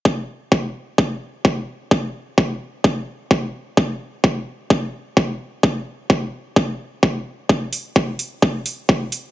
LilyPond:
\new DrumStaff \with { instrumentName = "Drums" } \drummode { \time 4/4 \tempo 4 = 129 bd4 bd4 bd4 bd4 | bd4 bd4 bd4 bd4 | bd4 bd4 bd4 bd4 | bd4 bd4 bd4 bd4 |
bd8 hho8 bd8 hho8 bd8 hho8 bd8 hho8 | }